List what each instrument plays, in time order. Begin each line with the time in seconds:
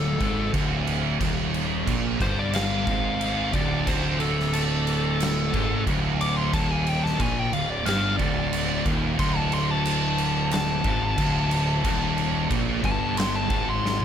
Already playing: picked electric bass D1, distorted electric guitar D2, lead electric guitar A4
0.19 picked electric bass G#1, distorted electric guitar G#2, kick, crash
0.52 picked electric bass D1, distorted electric guitar D2, kick, crash
0.87 crash
1.19 picked electric bass D#1, distorted electric guitar D#2, kick, crash
1.54 crash
1.86 picked electric bass A#1, distorted electric guitar A#2, kick, crash
2.19 picked electric bass G1, distorted electric guitar G2, lead electric guitar C5, kick, crash
2.39 lead electric guitar D5
2.53 lead electric guitar F5, snare, crash
2.86 picked electric bass G#1, distorted electric guitar G#2, kick, crash
3.21 crash
3.53 picked electric bass D1, distorted electric guitar D2, lead electric guitar D5, kick, crash
3.86 picked electric bass D1, distorted electric guitar D2, lead electric guitar C5, kick, crash
4.20 lead electric guitar A4, crash
4.40 snare
4.53 lead electric guitar A4, crash
4.87 crash
5.20 snare, crash
5.53 picked electric bass G#1, distorted electric guitar G#2, kick, crash
5.86 picked electric bass D1, distorted electric guitar D2, kick, crash
6.21 lead electric guitar D6, crash
6.37 lead electric guitar C6
6.53 picked electric bass D#1, distorted electric guitar D#2, lead electric guitar A5, kick, crash
6.71 lead electric guitar G#5
6.87 lead electric guitar G5, crash
7.04 lead electric guitar A5, snare
7.19 picked electric bass A#1, distorted electric guitar A#2, lead electric guitar G#5, kick, crash
7.39 lead electric guitar G5
7.53 picked electric bass D1, distorted electric guitar D2, lead electric guitar F5, crash
7.70 lead electric guitar D5
7.85 picked electric bass G1, distorted electric guitar G2, lead electric guitar F5, snare, crash
8.17 picked electric bass D1, distorted electric guitar D2, lead electric guitar D5, kick, crash
8.53 crash
8.86 picked electric bass D#1, distorted electric guitar D#2, kick, crash
9.19 picked electric bass D1, distorted electric guitar D2, lead electric guitar C6, kick, crash
9.36 lead electric guitar A5
9.52 lead electric guitar C6, crash
9.71 lead electric guitar A5
9.85 crash
10.18 crash
10.51 lead electric guitar A5, snare, crash
10.84 picked electric bass G#1, distorted electric guitar G#2, kick, crash
11.18 picked electric bass D1, distorted electric guitar D2, kick, crash
11.51 crash
11.83 picked electric bass D#1, distorted electric guitar D#2, kick, crash
12.18 crash
12.50 picked electric bass A#1, distorted electric guitar A#2, kick, crash
12.83 picked electric bass G1, distorted electric guitar G2, lead electric guitar A5, kick, crash
13.17 lead electric guitar C6, snare, crash
13.36 lead electric guitar A5
13.48 picked electric bass G#1, distorted electric guitar G#2, kick, crash
13.70 lead electric guitar C6
13.86 snare
14.00 high tom